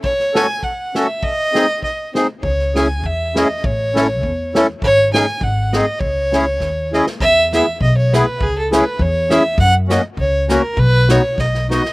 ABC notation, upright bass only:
X:1
M:2/4
L:1/8
Q:"Swing" 1/4=100
K:C#m
V:1 name="Upright bass" clef=bass
z4 | z4 | C,,2 E,,2 | A,,,2 E,,2 |
G,,,2 G,,,2 | C,,2 D,,2 | [K:E] E,,2 B,,,2 | C,,2 E,,2 |
F,,2 C,,2 | B,,,2 B,,,2 |]